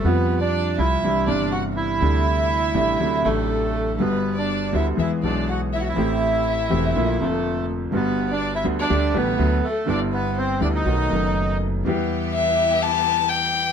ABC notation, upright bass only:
X:1
M:4/4
L:1/8
Q:1/4=122
K:G
V:1 name="Upright bass" clef=bass
=F,,3 C,, C,, G,,,3 | D,,3 A,,, D,, A,,,3 | G,,,3 D,, E,, B,,,3 | A,,,3 E,,, _B,,, =F,,,3 |
G,,,3 D,, D,, A,,, D,, z | G,,,3 D,, B,,, F,,,3 | [K:Em] E,,8 |]